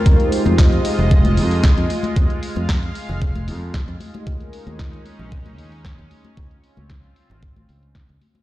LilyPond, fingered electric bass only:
\new Staff \with { instrumentName = "Fingered electric bass" } { \clef bass \time 4/4 \key f \minor \tempo 4 = 114 f,16 r8 f,8 r8 f,,8. f,8 r16 f,16 r8 | f,16 r8 f,8 r8 f,,8. f,8 r16 f,16 r8 | ees,16 r8 ees,8 r8 bes,,8. ees,8 r16 ees,16 r8 | des,16 r8 des,8 r8 aes,,8 r16 des,8 r16 des,16 r8 | }